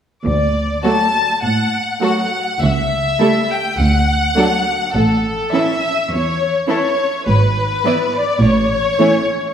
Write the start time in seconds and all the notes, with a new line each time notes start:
0.24 D2 D5
0.84 F#3 A3 F#4 A4 A5
1.42 A2 F#5
2.01 F#3 A3 F#4 A4 F#5
2.61 C#2 E5
3.20 G3 A3 E4 A4
3.50 G5
3.79 D2 F#5
4.37 F#3 A3 D4 A4
4.95 A1 A2 A4
5.53 E3 C#4 E4 A4 E5
6.11 E2 C#5
6.68 E3 C#4 E4 A4 C#5
7.26 G#1 G#2 B4
7.85 E3 B3 E4 D5
8.14 D5
8.42 A1 A2 C#5
8.99 E3 A3 C#4 C#5